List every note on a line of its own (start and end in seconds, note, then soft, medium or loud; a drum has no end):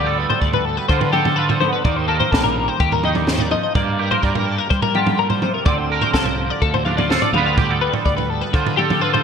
0.00 0.25 D2 medium
0.00 0.88 D3 medium
0.00 0.18 G3 soft
0.00 1.59 B3 medium
0.00 0.89 F4 soft
0.00 0.18 D5 medium
0.06 1.12 A4 soft
0.18 2.32 G3 medium
0.18 0.29 B4 medium
0.30 0.41 C5 medium
0.30 floor tom medium
0.42 0.78 D2 medium
0.42 0.53 D5 medium
0.42 kick medium
0.53 0.65 B4 medium
0.53 floor tom medium
0.65 0.77 A4 medium
0.77 0.88 B4 medium
0.89 1.58 D3 medium
0.89 1.62 D3 medium
0.89 1.37 F4 soft
0.89 1.01 C5 medium
0.89 kick medium
1.01 1.12 B4 medium
1.01 floor tom medium
1.13 1.36 G4 medium
1.13 1.58 A4 medium
1.13 mid tom medium
1.25 floor tom medium
1.25 mid tom medium
1.36 1.59 F4 medium
1.36 1.49 B4 medium
1.49 1.59 C5 medium
1.49 floor tom medium
1.60 1.82 D3 medium
1.60 1.82 B3 medium
1.60 1.72 C5 medium
1.60 mid tom medium
1.73 1.84 B4 medium
1.84 2.21 D#2 medium
1.84 3.03 D#3 medium
1.84 3.74 A#3 medium
1.84 1.96 D5 medium
1.84 kick loud
1.84 floor tom medium
1.96 2.08 C5 medium
2.08 2.19 A4 medium
2.08 3.73 A#4 medium
2.20 2.31 C5 medium
2.20 floor tom medium
2.31 2.69 A#1 medium
2.31 3.50 G3 medium
2.31 2.43 A4 medium
2.31 kick medium
2.31 snare medium
2.44 2.68 A#4 medium
2.44 floor tom medium
2.68 2.80 C5 medium
2.80 3.53 D#2 medium
2.80 2.92 G4 medium
2.80 kick medium
2.92 3.04 A#4 medium
2.92 floor tom medium
3.04 3.26 D#3 medium
3.04 3.73 D#4 medium
3.04 3.17 D#5 medium
3.04 mid tom medium
3.15 3.28 D5 medium
3.15 floor tom medium
3.15 mid tom medium
3.27 3.52 D#3 soft
3.27 3.40 C5 medium
3.27 snare medium
3.27 mid tom medium
3.39 3.51 D5 medium
3.39 floor tom medium
3.51 3.75 F3 medium
3.51 3.62 D#5 medium
3.51 mid tom medium
3.63 3.75 D#5 medium
3.75 5.18 G2 medium
3.75 4.12 G2 medium
3.75 5.67 A#3 medium
3.75 4.00 D5 medium
3.75 kick loud
3.75 floor tom medium
3.99 4.11 G4 medium
3.99 4.11 A#4 medium
4.11 5.67 A#4 soft
4.11 4.23 C5 medium
4.11 floor tom medium
4.23 4.60 G2 medium
4.23 5.64 G3 medium
4.23 4.35 D5 medium
4.23 kick medium
4.35 4.47 A#4 medium
4.35 floor tom medium
4.47 4.58 A4 medium
4.58 4.70 A#4 medium
4.70 5.44 G3 medium
4.70 4.82 C5 medium
4.70 kick medium
4.82 4.95 A#4 medium
4.82 floor tom medium
4.95 5.42 D3 medium
4.95 6.87 F4 medium
4.95 5.19 G4 medium
4.95 mid tom medium
5.07 floor tom medium
5.07 mid tom medium
5.19 5.43 A#2 medium
5.19 5.29 A#4 medium
5.30 5.42 C5 medium
5.30 floor tom medium
5.42 5.67 C3 medium
5.42 5.54 C5 medium
5.42 mid tom medium
5.54 5.65 A#4 medium
5.65 6.03 D2 medium
5.65 7.34 D3 medium
5.65 7.32 C4 medium
5.65 5.78 D5 medium
5.65 kick loud
5.65 floor tom medium
5.78 5.90 C5 medium
5.90 6.02 A4 medium
5.90 7.11 A#4 medium
6.02 6.13 C5 medium
6.02 floor tom medium
6.14 6.51 C2 medium
6.14 7.35 F3 medium
6.14 6.25 A4 medium
6.14 kick medium
6.14 snare medium
6.25 6.50 C5 medium
6.25 floor tom medium
6.50 6.62 D5 medium
6.62 7.17 D2 medium
6.62 6.74 A4 medium
6.62 kick medium
6.74 6.85 C5 medium
6.74 floor tom medium
6.85 7.31 A2 medium
6.85 6.99 D4 soft
6.85 6.97 F5 medium
6.85 mid tom medium
6.97 7.35 F4 soft
6.97 7.10 D5 medium
6.97 floor tom medium
6.97 mid tom medium
7.10 7.32 A4 medium
7.10 7.22 C5 medium
7.10 snare medium
7.10 mid tom medium
7.22 7.33 D5 medium
7.22 floor tom medium
7.33 7.88 D2 medium
7.33 8.53 D3 medium
7.33 7.81 G3 medium
7.33 9.23 B3 medium
7.33 8.53 F4 medium
7.33 7.45 F5 medium
7.33 mid tom medium
7.38 7.58 B4 medium
7.46 7.58 F5 medium
7.58 7.71 G4 medium
7.58 7.81 D5 medium
7.58 kick medium
7.58 floor tom medium
7.71 8.78 A4 soft
7.82 9.23 G3 medium
7.82 7.94 B4 medium
7.93 8.05 C5 medium
7.93 floor tom medium
8.05 8.42 D2 medium
8.05 8.16 D5 medium
8.05 kick medium
8.17 8.30 B4 medium
8.17 floor tom medium
8.30 8.41 A4 medium
8.41 8.53 B4 medium
8.53 9.22 D3 medium
8.53 9.23 D3 loud
8.53 9.00 F4 medium
8.53 8.65 C5 medium
8.53 kick loud
8.65 8.77 B4 medium
8.65 floor tom medium
8.77 9.02 G4 medium
8.77 9.23 A4 medium
8.77 mid tom medium
8.90 floor tom medium
8.90 mid tom medium
9.02 9.23 F4 medium
9.02 9.13 B4 medium
9.14 9.23 C5 medium
9.14 floor tom medium